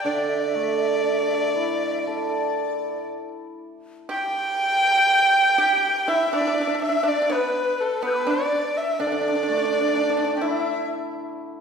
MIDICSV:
0, 0, Header, 1, 5, 480
1, 0, Start_track
1, 0, Tempo, 985222
1, 26, Time_signature, 4, 2, 24, 8
1, 506, Tempo, 1016949
1, 2426, Tempo, 974026
1, 4346, Tempo, 947867
1, 5665, End_track
2, 0, Start_track
2, 0, Title_t, "Dizi"
2, 0, Program_c, 0, 73
2, 24, Note_on_c, 0, 74, 47
2, 71, Note_on_c, 0, 76, 50
2, 78, Note_off_c, 0, 74, 0
2, 109, Note_on_c, 0, 74, 50
2, 116, Note_off_c, 0, 76, 0
2, 145, Note_on_c, 0, 76, 49
2, 152, Note_off_c, 0, 74, 0
2, 197, Note_on_c, 0, 74, 54
2, 204, Note_off_c, 0, 76, 0
2, 236, Note_on_c, 0, 76, 55
2, 244, Note_off_c, 0, 74, 0
2, 268, Note_on_c, 0, 74, 53
2, 275, Note_off_c, 0, 76, 0
2, 309, Note_on_c, 0, 76, 51
2, 316, Note_off_c, 0, 74, 0
2, 354, Note_on_c, 0, 74, 48
2, 361, Note_off_c, 0, 76, 0
2, 393, Note_on_c, 0, 76, 55
2, 400, Note_off_c, 0, 74, 0
2, 426, Note_on_c, 0, 74, 48
2, 434, Note_off_c, 0, 76, 0
2, 469, Note_on_c, 0, 76, 45
2, 477, Note_off_c, 0, 74, 0
2, 496, Note_on_c, 0, 74, 48
2, 503, Note_off_c, 0, 76, 0
2, 532, Note_on_c, 0, 76, 51
2, 539, Note_off_c, 0, 74, 0
2, 575, Note_on_c, 0, 74, 49
2, 582, Note_off_c, 0, 76, 0
2, 622, Note_on_c, 0, 76, 49
2, 629, Note_off_c, 0, 74, 0
2, 656, Note_on_c, 0, 74, 46
2, 663, Note_off_c, 0, 76, 0
2, 688, Note_on_c, 0, 76, 45
2, 695, Note_off_c, 0, 74, 0
2, 728, Note_on_c, 0, 74, 46
2, 735, Note_off_c, 0, 76, 0
2, 774, Note_on_c, 0, 76, 46
2, 782, Note_off_c, 0, 74, 0
2, 805, Note_on_c, 0, 74, 48
2, 812, Note_off_c, 0, 76, 0
2, 853, Note_on_c, 0, 76, 50
2, 860, Note_off_c, 0, 74, 0
2, 880, Note_on_c, 0, 74, 51
2, 887, Note_off_c, 0, 76, 0
2, 922, Note_on_c, 0, 76, 53
2, 929, Note_off_c, 0, 74, 0
2, 959, Note_on_c, 0, 74, 50
2, 966, Note_off_c, 0, 76, 0
2, 1006, Note_on_c, 0, 76, 46
2, 1013, Note_off_c, 0, 74, 0
2, 1045, Note_on_c, 0, 74, 62
2, 1052, Note_off_c, 0, 76, 0
2, 1472, Note_off_c, 0, 74, 0
2, 1956, Note_on_c, 0, 79, 86
2, 2911, Note_on_c, 0, 76, 76
2, 2918, Note_off_c, 0, 79, 0
2, 3271, Note_off_c, 0, 76, 0
2, 3279, Note_on_c, 0, 76, 71
2, 3407, Note_on_c, 0, 74, 68
2, 3414, Note_off_c, 0, 76, 0
2, 3528, Note_on_c, 0, 71, 63
2, 3535, Note_off_c, 0, 74, 0
2, 3869, Note_off_c, 0, 71, 0
2, 3872, Note_on_c, 0, 71, 67
2, 3879, Note_on_c, 0, 91, 28
2, 3882, Note_off_c, 0, 71, 0
2, 3902, Note_off_c, 0, 91, 0
2, 3905, Note_on_c, 0, 88, 30
2, 3919, Note_off_c, 0, 88, 0
2, 3922, Note_on_c, 0, 86, 30
2, 3931, Note_on_c, 0, 83, 33
2, 3932, Note_off_c, 0, 86, 0
2, 3947, Note_off_c, 0, 83, 0
2, 3950, Note_on_c, 0, 81, 37
2, 3969, Note_off_c, 0, 81, 0
2, 3972, Note_on_c, 0, 79, 39
2, 3988, Note_off_c, 0, 79, 0
2, 3991, Note_on_c, 0, 76, 42
2, 4001, Note_on_c, 0, 74, 65
2, 4008, Note_off_c, 0, 76, 0
2, 4236, Note_on_c, 0, 76, 60
2, 4243, Note_off_c, 0, 74, 0
2, 4321, Note_off_c, 0, 76, 0
2, 4321, Note_on_c, 0, 76, 46
2, 4344, Note_on_c, 0, 74, 74
2, 4351, Note_off_c, 0, 76, 0
2, 4934, Note_off_c, 0, 74, 0
2, 5030, Note_on_c, 0, 79, 48
2, 5064, Note_on_c, 0, 76, 59
2, 5071, Note_off_c, 0, 79, 0
2, 5304, Note_off_c, 0, 76, 0
2, 5665, End_track
3, 0, Start_track
3, 0, Title_t, "Erhu"
3, 0, Program_c, 1, 110
3, 20, Note_on_c, 1, 74, 85
3, 1451, Note_off_c, 1, 74, 0
3, 1958, Note_on_c, 1, 79, 107
3, 2911, Note_on_c, 1, 76, 90
3, 2919, Note_off_c, 1, 79, 0
3, 3031, Note_off_c, 1, 76, 0
3, 3035, Note_on_c, 1, 74, 78
3, 3257, Note_off_c, 1, 74, 0
3, 3274, Note_on_c, 1, 76, 81
3, 3399, Note_on_c, 1, 74, 77
3, 3407, Note_off_c, 1, 76, 0
3, 3518, Note_on_c, 1, 71, 75
3, 3526, Note_off_c, 1, 74, 0
3, 3756, Note_on_c, 1, 69, 74
3, 3763, Note_off_c, 1, 71, 0
3, 3872, Note_off_c, 1, 69, 0
3, 3877, Note_on_c, 1, 71, 86
3, 3999, Note_on_c, 1, 74, 82
3, 4006, Note_off_c, 1, 71, 0
3, 4232, Note_on_c, 1, 76, 76
3, 4239, Note_off_c, 1, 74, 0
3, 4346, Note_on_c, 1, 74, 81
3, 4354, Note_off_c, 1, 76, 0
3, 5306, Note_off_c, 1, 74, 0
3, 5665, End_track
4, 0, Start_track
4, 0, Title_t, "Hammered dulcimer"
4, 0, Program_c, 2, 15
4, 21, Note_on_c, 2, 50, 52
4, 268, Note_on_c, 2, 57, 42
4, 507, Note_on_c, 2, 62, 40
4, 749, Note_on_c, 2, 64, 39
4, 993, Note_on_c, 2, 69, 42
4, 1231, Note_off_c, 2, 57, 0
4, 1471, Note_off_c, 2, 50, 0
4, 1473, Note_off_c, 2, 62, 0
4, 1718, Note_off_c, 2, 64, 0
4, 1959, Note_off_c, 2, 69, 0
4, 4342, Note_on_c, 2, 50, 48
4, 4589, Note_on_c, 2, 57, 42
4, 4836, Note_on_c, 2, 62, 46
4, 5067, Note_on_c, 2, 64, 44
4, 5547, Note_off_c, 2, 57, 0
4, 5665, Note_off_c, 2, 50, 0
4, 5665, Note_off_c, 2, 62, 0
4, 5665, Note_off_c, 2, 64, 0
4, 5665, End_track
5, 0, Start_track
5, 0, Title_t, "Pipa"
5, 0, Program_c, 3, 105
5, 27, Note_on_c, 3, 62, 56
5, 1455, Note_off_c, 3, 62, 0
5, 1946, Note_on_c, 3, 67, 71
5, 2644, Note_off_c, 3, 67, 0
5, 2660, Note_on_c, 3, 67, 74
5, 2889, Note_off_c, 3, 67, 0
5, 2905, Note_on_c, 3, 64, 72
5, 3019, Note_off_c, 3, 64, 0
5, 3028, Note_on_c, 3, 62, 69
5, 3061, Note_off_c, 3, 62, 0
5, 3067, Note_on_c, 3, 62, 47
5, 3092, Note_off_c, 3, 62, 0
5, 3098, Note_on_c, 3, 62, 49
5, 3127, Note_off_c, 3, 62, 0
5, 3133, Note_on_c, 3, 62, 39
5, 3161, Note_off_c, 3, 62, 0
5, 3167, Note_on_c, 3, 62, 48
5, 3192, Note_off_c, 3, 62, 0
5, 3198, Note_on_c, 3, 62, 41
5, 3228, Note_off_c, 3, 62, 0
5, 3234, Note_on_c, 3, 62, 44
5, 3264, Note_off_c, 3, 62, 0
5, 3270, Note_on_c, 3, 62, 41
5, 3300, Note_off_c, 3, 62, 0
5, 3306, Note_on_c, 3, 62, 51
5, 3348, Note_off_c, 3, 62, 0
5, 3374, Note_on_c, 3, 62, 70
5, 3460, Note_off_c, 3, 62, 0
5, 3466, Note_on_c, 3, 62, 49
5, 3503, Note_off_c, 3, 62, 0
5, 3505, Note_on_c, 3, 59, 66
5, 3846, Note_off_c, 3, 59, 0
5, 3864, Note_on_c, 3, 59, 59
5, 3977, Note_off_c, 3, 59, 0
5, 3984, Note_on_c, 3, 62, 64
5, 4323, Note_off_c, 3, 62, 0
5, 4343, Note_on_c, 3, 62, 62
5, 4374, Note_off_c, 3, 62, 0
5, 4380, Note_on_c, 3, 62, 45
5, 4399, Note_off_c, 3, 62, 0
5, 4405, Note_on_c, 3, 62, 51
5, 4447, Note_off_c, 3, 62, 0
5, 4453, Note_on_c, 3, 62, 44
5, 4481, Note_off_c, 3, 62, 0
5, 4487, Note_on_c, 3, 62, 50
5, 4518, Note_off_c, 3, 62, 0
5, 4524, Note_on_c, 3, 62, 43
5, 4556, Note_off_c, 3, 62, 0
5, 4562, Note_on_c, 3, 62, 49
5, 4599, Note_off_c, 3, 62, 0
5, 4613, Note_on_c, 3, 62, 43
5, 4628, Note_off_c, 3, 62, 0
5, 4635, Note_on_c, 3, 62, 46
5, 4667, Note_off_c, 3, 62, 0
5, 4673, Note_on_c, 3, 62, 39
5, 4707, Note_off_c, 3, 62, 0
5, 4714, Note_on_c, 3, 62, 44
5, 4748, Note_off_c, 3, 62, 0
5, 4754, Note_on_c, 3, 62, 40
5, 4784, Note_off_c, 3, 62, 0
5, 4790, Note_on_c, 3, 62, 46
5, 4822, Note_off_c, 3, 62, 0
5, 4828, Note_on_c, 3, 62, 42
5, 4853, Note_off_c, 3, 62, 0
5, 4859, Note_on_c, 3, 62, 48
5, 4893, Note_off_c, 3, 62, 0
5, 4901, Note_on_c, 3, 62, 44
5, 4931, Note_off_c, 3, 62, 0
5, 4937, Note_on_c, 3, 62, 50
5, 4969, Note_off_c, 3, 62, 0
5, 4975, Note_on_c, 3, 62, 46
5, 5006, Note_off_c, 3, 62, 0
5, 5038, Note_on_c, 3, 67, 44
5, 5059, Note_off_c, 3, 67, 0
5, 5061, Note_on_c, 3, 64, 56
5, 5286, Note_off_c, 3, 64, 0
5, 5665, End_track
0, 0, End_of_file